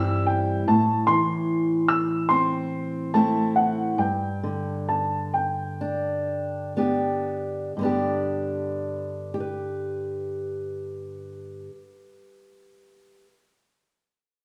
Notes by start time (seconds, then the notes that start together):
Already playing: G2 E3 G3 C4 E4 E6
0.26 G5
0.68 A2 A5
1.07 E3 C6
1.88 E6
2.29 C4 C6
3.14 A3 C4 E4 A5
3.56 F#5
3.98 G2 G5
4.43 D3
4.89 A5
5.34 G5
5.81 D4
6.77 B3 D4 G4
7.77 G2 D3
7.81 B3 D4 G4
9.34 G4
9.40 B4